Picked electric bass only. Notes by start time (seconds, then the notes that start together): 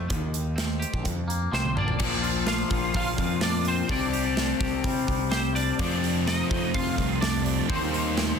0.10 D#2
0.94 A#1
1.06 F2
1.53 C2
1.76 A#1
2.00 A#1
2.71 A#1
2.95 A#1
3.19 F2
3.90 C2
4.60 C2
4.84 C3
5.08 C2
5.79 F2
6.51 F2
6.75 F2
6.98 C2
7.70 D#2